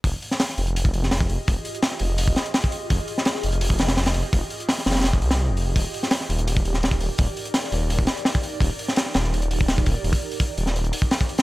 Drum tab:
HH |o---o---o---o-x-o---o---o---o---|o---o-x-o---o---o---o-x-o---o---|o---o---o---o-x-o---o-o-o-o-o---|o---o-x-o---ooooo---o-o-----o---|
SD |------o-o-o-----------o-o-------|--------o-o---------o---o-------|------o-o-o---------o-o-o-o-----|--------o-o-ooooo-----o---------|
BD |o-----------------o-------o-----|o-----------------o-------o-----|o-----------------o-------------|o-----------------o-------------|

HH |o---o---o---o-x-o---o---o---o---|o---o-x-o---o---o---o-x-o---o---|o---o---o---o---o-x-o---o---o---|o-o---o-o---o---o-x-o---o---o-o-|
SD |------o-o-o-----------o-o-------|--------o-o---------o---o-------|------o-o-o-o-o---------o-------|--------------o---------o-----o-|
BD |o-----------------o-------o-----|o-----------------o-------o-----|o---------------------o---o-o---|--o-----o-------------o---o-----|